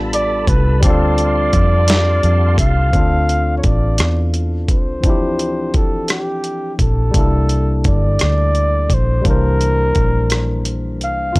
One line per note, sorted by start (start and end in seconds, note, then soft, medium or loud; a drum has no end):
0.00 0.44 A1 medium
0.00 0.77 G3 medium
0.00 0.78 B3 medium
0.00 0.80 D4 medium
0.00 0.81 F4 medium
0.00 0.80 A4 medium
0.00 0.82 A4 medium
0.00 2.90 A5 medium
0.00 0.81 B5 medium
0.13 0.50 D5 loud
0.13 closed hi-hat soft
0.47 0.83 C2 medium
0.47 0.83 B4 medium
0.47 kick medium
0.47 closed hi-hat medium
0.80 1.49 D2 loud
0.80 2.88 G3 medium
0.80 2.89 C4 medium
0.80 2.91 G4 medium
0.80 2.55 D5 loud
0.80 2.91 F5 medium
0.80 2.91 C6 medium
0.80 kick loud
0.80 closed hi-hat medium
0.85 2.90 D4 medium
0.85 2.91 F4 medium
0.89 2.93 A4 medium
1.18 closed hi-hat medium
1.53 2.20 F2 medium
1.53 kick medium
1.53 closed hi-hat soft
1.88 snare loud
1.88 closed hi-hat medium
2.23 2.55 F2 medium
2.23 closed hi-hat soft
2.58 2.90 C2 medium
2.58 3.53 F5 loud
2.58 kick medium
2.58 closed hi-hat soft
2.90 3.60 D2 medium
2.90 2.98 E3 soft
2.90 5.00 C4 soft
2.90 kick loud
2.90 closed hi-hat soft
2.95 5.01 D4 soft
2.95 5.02 F4 medium
2.99 5.03 A4 medium
3.29 closed hi-hat soft
3.57 3.66 C#5 medium
3.64 4.00 A1 medium
3.64 4.34 D5 medium
3.64 kick medium
3.64 closed hi-hat soft
3.98 4.69 E2 medium
3.98 cross-stick medium
3.98 closed hi-hat medium
4.34 closed hi-hat soft
4.68 5.04 C2 medium
4.68 5.78 C5 medium
4.68 kick medium
4.68 closed hi-hat soft
5.00 5.75 D2 medium
5.00 5.09 E3 soft
5.00 7.10 C4 soft
5.00 kick loud
5.00 closed hi-hat medium
5.05 7.12 F3 medium
5.05 7.11 D4 soft
5.05 7.12 E4 medium
5.09 7.13 G4 medium
5.39 closed hi-hat soft
5.74 6.76 C2 medium
5.74 6.10 A4 medium
5.74 kick medium
5.74 closed hi-hat soft
6.08 6.76 G4 medium
6.08 cross-stick loud
6.08 closed hi-hat medium
6.44 closed hi-hat soft
6.79 7.11 A#1 medium
6.79 7.82 A4 medium
6.79 kick medium
6.79 closed hi-hat soft
7.11 7.87 C2 medium
7.11 9.19 G3 medium
7.11 9.20 A#3 soft
7.11 kick loud
7.11 closed hi-hat medium
7.16 9.22 D4 medium
7.16 9.23 E4 soft
7.21 9.24 A4 medium
7.49 closed hi-hat soft
7.84 8.17 G1 medium
7.84 8.95 D5 medium
7.84 kick medium
7.84 closed hi-hat soft
8.19 8.87 D2 medium
8.19 cross-stick medium
8.19 closed hi-hat medium
8.55 closed hi-hat soft
8.90 9.22 A#1 medium
8.90 kick medium
8.90 closed hi-hat soft
8.94 9.27 C5 medium
9.21 9.91 C2 medium
9.21 11.30 G3 medium
9.21 11.31 A#3 soft
9.21 kick loud
9.21 closed hi-hat medium
9.26 11.33 E3 medium
9.26 11.32 D4 soft
9.26 10.71 A#4 loud
9.31 11.34 C5 medium
9.61 closed hi-hat soft
9.95 11.02 A#1 medium
9.95 kick medium
9.95 closed hi-hat soft
10.30 cross-stick medium
10.30 closed hi-hat medium
10.65 closed hi-hat soft
11.01 11.33 C2 medium
11.01 11.39 F5 medium
11.01 closed hi-hat soft
11.33 11.39 D2 medium
11.33 11.39 C4 soft
11.33 11.39 F4 medium
11.33 kick loud
11.33 closed hi-hat medium